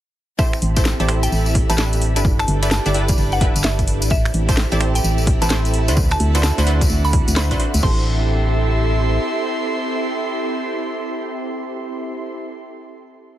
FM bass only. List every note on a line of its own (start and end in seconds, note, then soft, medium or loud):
0.62 0.94 A1 loud
1.00 1.28 A1 loud
1.32 1.63 A1 medium
1.70 2.18 A1 medium
2.16 2.44 G1 medium
2.48 2.80 G1 loud
2.86 3.14 G1 loud
3.18 3.49 G1 medium
3.56 4.04 G1 medium
4.02 4.30 A1 medium
4.34 4.66 A1 loud
4.72 5.00 A1 loud
5.04 5.35 A1 medium
5.42 5.90 A1 medium
5.89 6.16 D2 medium
6.20 6.52 D2 loud
6.58 6.86 D2 loud
6.90 7.21 D2 medium
7.28 7.56 D2 medium
7.74 7.81 D2 medium
7.83 9.18 A1 loud